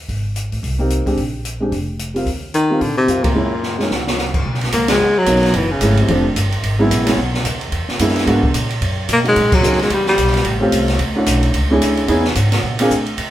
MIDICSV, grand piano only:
0, 0, Header, 1, 2, 480
1, 0, Start_track
1, 0, Tempo, 272727
1, 151, Time_signature, 4, 2, 24, 8
1, 23412, End_track
2, 0, Start_track
2, 0, Title_t, "Grand piano"
2, 0, Program_c, 0, 0
2, 1380, Note_on_c, 0, 58, 51
2, 1399, Note_on_c, 0, 60, 49
2, 1412, Note_on_c, 0, 63, 45
2, 1415, Note_on_c, 0, 67, 56
2, 1838, Note_off_c, 0, 58, 0
2, 1848, Note_off_c, 0, 60, 0
2, 1855, Note_off_c, 0, 63, 0
2, 1856, Note_off_c, 0, 67, 0
2, 1869, Note_on_c, 0, 56, 49
2, 1874, Note_on_c, 0, 60, 51
2, 1886, Note_on_c, 0, 62, 49
2, 1898, Note_on_c, 0, 67, 60
2, 2048, Note_off_c, 0, 56, 0
2, 2051, Note_off_c, 0, 60, 0
2, 2056, Note_off_c, 0, 62, 0
2, 2062, Note_off_c, 0, 67, 0
2, 2823, Note_on_c, 0, 56, 46
2, 2831, Note_on_c, 0, 60, 39
2, 2848, Note_on_c, 0, 62, 44
2, 2856, Note_on_c, 0, 67, 54
2, 3005, Note_off_c, 0, 56, 0
2, 3009, Note_off_c, 0, 60, 0
2, 3017, Note_off_c, 0, 62, 0
2, 3021, Note_off_c, 0, 67, 0
2, 3768, Note_on_c, 0, 55, 50
2, 3791, Note_on_c, 0, 58, 46
2, 3793, Note_on_c, 0, 60, 46
2, 3801, Note_on_c, 0, 65, 60
2, 3958, Note_off_c, 0, 55, 0
2, 3969, Note_off_c, 0, 58, 0
2, 3970, Note_off_c, 0, 60, 0
2, 3974, Note_off_c, 0, 65, 0
2, 4746, Note_on_c, 0, 55, 54
2, 4760, Note_on_c, 0, 58, 48
2, 4770, Note_on_c, 0, 60, 48
2, 4777, Note_on_c, 0, 65, 56
2, 4927, Note_off_c, 0, 55, 0
2, 4934, Note_off_c, 0, 58, 0
2, 4939, Note_off_c, 0, 60, 0
2, 4942, Note_off_c, 0, 65, 0
2, 5401, Note_on_c, 0, 55, 50
2, 5408, Note_on_c, 0, 58, 44
2, 5427, Note_on_c, 0, 60, 46
2, 5432, Note_on_c, 0, 65, 60
2, 5672, Note_off_c, 0, 55, 0
2, 5675, Note_off_c, 0, 58, 0
2, 5684, Note_off_c, 0, 60, 0
2, 5687, Note_off_c, 0, 65, 0
2, 5880, Note_on_c, 0, 56, 58
2, 5891, Note_on_c, 0, 58, 50
2, 5903, Note_on_c, 0, 61, 49
2, 5922, Note_on_c, 0, 64, 58
2, 6151, Note_off_c, 0, 56, 0
2, 6157, Note_off_c, 0, 58, 0
2, 6163, Note_off_c, 0, 61, 0
2, 6172, Note_off_c, 0, 64, 0
2, 6655, Note_on_c, 0, 56, 58
2, 6661, Note_on_c, 0, 58, 47
2, 6675, Note_on_c, 0, 61, 48
2, 6684, Note_on_c, 0, 63, 54
2, 6842, Note_off_c, 0, 56, 0
2, 6846, Note_off_c, 0, 58, 0
2, 6852, Note_off_c, 0, 61, 0
2, 6857, Note_off_c, 0, 63, 0
2, 9261, Note_on_c, 0, 54, 59
2, 9267, Note_on_c, 0, 58, 55
2, 9290, Note_on_c, 0, 59, 56
2, 9295, Note_on_c, 0, 61, 52
2, 9298, Note_on_c, 0, 63, 67
2, 9748, Note_off_c, 0, 54, 0
2, 9751, Note_off_c, 0, 58, 0
2, 9763, Note_off_c, 0, 59, 0
2, 9765, Note_off_c, 0, 61, 0
2, 9767, Note_off_c, 0, 63, 0
2, 10218, Note_on_c, 0, 54, 53
2, 10228, Note_on_c, 0, 56, 49
2, 10238, Note_on_c, 0, 57, 53
2, 10249, Note_on_c, 0, 61, 48
2, 10263, Note_on_c, 0, 64, 59
2, 10687, Note_off_c, 0, 54, 0
2, 10692, Note_off_c, 0, 56, 0
2, 10697, Note_off_c, 0, 57, 0
2, 10703, Note_off_c, 0, 61, 0
2, 10710, Note_off_c, 0, 64, 0
2, 10711, Note_on_c, 0, 53, 65
2, 10725, Note_on_c, 0, 55, 54
2, 10732, Note_on_c, 0, 60, 55
2, 10735, Note_on_c, 0, 57, 59
2, 10744, Note_on_c, 0, 62, 63
2, 10969, Note_off_c, 0, 53, 0
2, 10975, Note_off_c, 0, 55, 0
2, 10979, Note_off_c, 0, 60, 0
2, 10981, Note_off_c, 0, 57, 0
2, 10985, Note_off_c, 0, 62, 0
2, 11953, Note_on_c, 0, 54, 63
2, 11957, Note_on_c, 0, 56, 66
2, 11966, Note_on_c, 0, 59, 61
2, 11981, Note_on_c, 0, 61, 61
2, 11981, Note_on_c, 0, 64, 79
2, 12390, Note_off_c, 0, 54, 0
2, 12404, Note_off_c, 0, 56, 0
2, 12407, Note_off_c, 0, 59, 0
2, 12412, Note_off_c, 0, 61, 0
2, 12417, Note_on_c, 0, 54, 61
2, 12422, Note_off_c, 0, 64, 0
2, 12431, Note_on_c, 0, 56, 53
2, 12433, Note_on_c, 0, 59, 55
2, 12438, Note_on_c, 0, 61, 58
2, 12451, Note_on_c, 0, 64, 67
2, 12605, Note_off_c, 0, 54, 0
2, 12612, Note_off_c, 0, 56, 0
2, 12613, Note_off_c, 0, 59, 0
2, 12616, Note_off_c, 0, 61, 0
2, 12622, Note_off_c, 0, 64, 0
2, 14077, Note_on_c, 0, 56, 62
2, 14081, Note_on_c, 0, 58, 53
2, 14093, Note_on_c, 0, 59, 53
2, 14094, Note_on_c, 0, 64, 67
2, 14095, Note_on_c, 0, 62, 48
2, 14520, Note_off_c, 0, 56, 0
2, 14532, Note_off_c, 0, 58, 0
2, 14539, Note_off_c, 0, 59, 0
2, 14546, Note_off_c, 0, 62, 0
2, 14546, Note_off_c, 0, 64, 0
2, 14546, Note_on_c, 0, 56, 66
2, 14559, Note_on_c, 0, 58, 59
2, 14565, Note_on_c, 0, 59, 55
2, 14573, Note_on_c, 0, 62, 58
2, 14576, Note_on_c, 0, 66, 70
2, 14807, Note_off_c, 0, 56, 0
2, 14813, Note_off_c, 0, 58, 0
2, 14816, Note_off_c, 0, 59, 0
2, 14820, Note_off_c, 0, 62, 0
2, 14822, Note_off_c, 0, 66, 0
2, 16254, Note_on_c, 0, 58, 45
2, 16262, Note_on_c, 0, 54, 57
2, 16268, Note_on_c, 0, 61, 47
2, 16276, Note_on_c, 0, 63, 52
2, 16283, Note_on_c, 0, 66, 65
2, 16444, Note_off_c, 0, 58, 0
2, 16448, Note_off_c, 0, 54, 0
2, 16451, Note_off_c, 0, 61, 0
2, 16455, Note_off_c, 0, 63, 0
2, 16459, Note_off_c, 0, 66, 0
2, 16928, Note_on_c, 0, 54, 59
2, 16931, Note_on_c, 0, 58, 53
2, 16947, Note_on_c, 0, 61, 54
2, 16949, Note_on_c, 0, 63, 54
2, 16960, Note_on_c, 0, 68, 60
2, 17198, Note_off_c, 0, 54, 0
2, 17200, Note_off_c, 0, 58, 0
2, 17207, Note_off_c, 0, 61, 0
2, 17208, Note_off_c, 0, 63, 0
2, 17214, Note_off_c, 0, 68, 0
2, 18651, Note_on_c, 0, 57, 70
2, 18662, Note_on_c, 0, 60, 67
2, 18663, Note_on_c, 0, 61, 63
2, 18674, Note_on_c, 0, 65, 64
2, 18688, Note_on_c, 0, 67, 78
2, 19303, Note_off_c, 0, 57, 0
2, 19309, Note_off_c, 0, 60, 0
2, 19309, Note_off_c, 0, 61, 0
2, 19315, Note_off_c, 0, 65, 0
2, 19322, Note_off_c, 0, 67, 0
2, 19637, Note_on_c, 0, 61, 57
2, 19639, Note_on_c, 0, 57, 60
2, 19641, Note_on_c, 0, 62, 59
2, 19652, Note_on_c, 0, 64, 55
2, 19668, Note_on_c, 0, 66, 69
2, 20276, Note_off_c, 0, 61, 0
2, 20277, Note_off_c, 0, 57, 0
2, 20278, Note_off_c, 0, 62, 0
2, 20284, Note_off_c, 0, 64, 0
2, 20292, Note_off_c, 0, 66, 0
2, 20596, Note_on_c, 0, 61, 66
2, 20599, Note_on_c, 0, 57, 69
2, 20616, Note_on_c, 0, 62, 65
2, 20616, Note_on_c, 0, 64, 61
2, 20628, Note_on_c, 0, 68, 73
2, 21235, Note_off_c, 0, 61, 0
2, 21237, Note_off_c, 0, 57, 0
2, 21245, Note_off_c, 0, 64, 0
2, 21246, Note_off_c, 0, 62, 0
2, 21249, Note_on_c, 0, 59, 68
2, 21251, Note_off_c, 0, 68, 0
2, 21263, Note_on_c, 0, 61, 62
2, 21263, Note_on_c, 0, 63, 64
2, 21277, Note_on_c, 0, 64, 65
2, 21277, Note_on_c, 0, 68, 79
2, 21518, Note_off_c, 0, 59, 0
2, 21525, Note_off_c, 0, 61, 0
2, 21525, Note_off_c, 0, 63, 0
2, 21532, Note_off_c, 0, 64, 0
2, 21532, Note_off_c, 0, 68, 0
2, 22521, Note_on_c, 0, 58, 71
2, 22526, Note_on_c, 0, 60, 69
2, 22545, Note_on_c, 0, 65, 64
2, 22547, Note_on_c, 0, 62, 65
2, 22548, Note_on_c, 0, 68, 82
2, 22698, Note_off_c, 0, 58, 0
2, 22700, Note_off_c, 0, 60, 0
2, 22709, Note_off_c, 0, 65, 0
2, 22710, Note_off_c, 0, 62, 0
2, 22711, Note_off_c, 0, 68, 0
2, 23412, End_track
0, 0, End_of_file